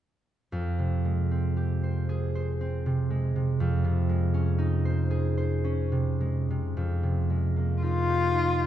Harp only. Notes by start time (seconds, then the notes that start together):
0.52 F2
0.79 C3
1.05 G#3
1.31 C4
1.57 G4
1.83 C5
2.09 G#4
2.35 C5
2.61 C4
2.86 C3
3.10 G#3
3.36 C3
3.60 F2
3.84 C3
4.09 G#3
4.34 C#4
4.58 D#4
4.85 C5
5.11 G#4
5.37 C5
5.64 C#4
5.92 C3
6.21 G#3
6.50 C3
6.77 F2
7.03 C3
7.30 G#3
7.56 A#3
7.83 D#4
8.10 G4
8.35 D#4
8.60 G4